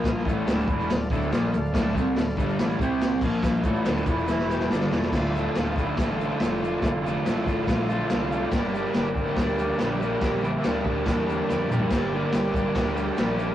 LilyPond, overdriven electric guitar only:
\new Staff \with { instrumentName = "Overdriven electric guitar" } { \clef bass \time 4/4 \key d \minor \tempo 4 = 142 <bes, f bes>8 <a, e a>8 <d, a, d>8 <e, b, e>8 <d, a,>8 <d, a, d>8 <bes, f bes>8 <d, a,>8 | <d, a, d>8 <c g c'>8 <d, a,>8 <g, d g>8 <a, e a>8 <c g c'>4 <bes, f bes>8~ | <bes, f bes>8 <a, e a>8 <d, a, d>8 <e, b, e>8 <e, b, e>4 <g, d g>8 <e, b, e>8 | <d, a, d a f'>8 <d a f'>8 <d, a, d a f'>8 <d a f'>8 <a, d a f'>8 <d, a, d a f'>8 <a, d a f'>8 <d a f'>8 |
<d, a, d a f'>8 <d a f'>8 <d, a, d a f'>8 <d a f'>8 <a, d a f'>8 <d, a, d a f'>8 <a, d a f'>8 <d a f'>8 | <g, d g bes d' g'>8 <g bes d' g'>8 <g, d g bes d' g'>8 <g bes d' g'>8 <g bes d' g'>8 <g, d g bes d' g'>8 <g bes d' g'>8 <g bes d' g'>8 | <g, d g bes d' g'>8 <g bes d' g'>8 <g, d g bes d' g'>8 <g bes d' g'>8 <g bes d' g'>8 <g, d g bes d' g'>8 <g bes d' g'>8 <g bes d' g'>8 | <g, d g bes d' g'>8 <g bes d' g'>8 <g, d g bes d' g'>8 <g bes d' g'>8 <g bes d' g'>8 <g, d g bes d' g'>8 <g bes d' g'>8 <g bes d' g'>8 | }